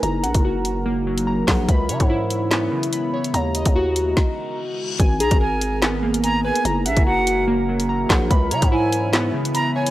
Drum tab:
HH |x-xx--x----x--o-|x-xx--x----xx--x|x-xx--x---------|x-xx--x----xx--x|
CP |--------------x-|--------x-------|----------------|--------x-------|
SD |--------------o-|--------o-------|--------o-------|--------o-------|
BD |---o----------o-|o--o------------|---o----o-------|o--o------------|

HH |x-xx--x----x--o-|x-xx--x----xx--x|
CP |--------------x-|--------x-------|
SD |--------------o-|--------o-------|
BD |---o----------o-|o--o------------|